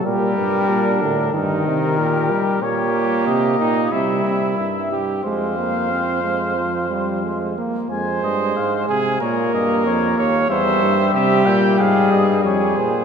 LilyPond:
<<
  \new Staff \with { instrumentName = "Cornet" } { \time 4/4 \key ees \major \tempo 4 = 92 bes'2 bes'2 | \key f \minor des''4 ees''4 e''4 e''8 r8 | f''2.~ f''8 r8 | aes''8 ees''8 f''8 aes''8 des''8 ees''8 des''8 f''8 |
e''4 e''8 g''8 f''8 ees''8 des''8 c''8 | }
  \new Staff \with { instrumentName = "Trumpet" } { \time 4/4 \key ees \major g'4 d'4 ees'4 g'4 | \key f \minor g'4. ees'8 e'4. g'8 | c''2.~ c''8 r8 | c''4. aes'8 bes'4. des''8 |
c''4 g'4 aes'4 aes'4 | }
  \new Staff \with { instrumentName = "Trombone" } { \clef bass \time 4/4 \key ees \major g4. d8 ees4. g8 | \key f \minor bes2 g4. r8 | aes8 bes8 c'8 aes8 f8 g8 aes8 bes8 | aes2 bes2 |
g1 | }
  \new Staff \with { instrumentName = "Euphonium" } { \clef bass \time 4/4 \key ees \major bes,8 g,8 bes,8 a,8 g,8 c8 bes,8 r8 | \key f \minor bes,4 c8 bes,8 c8 c8 g,4 | f,2.~ f,8 r8 | f,8 g,8 aes,8 c8 bes,8 g,8 f,8 ees,8 |
e,8 g,8 c8 bes,8 aes,8 g,8 f,8 bes,8 | }
>>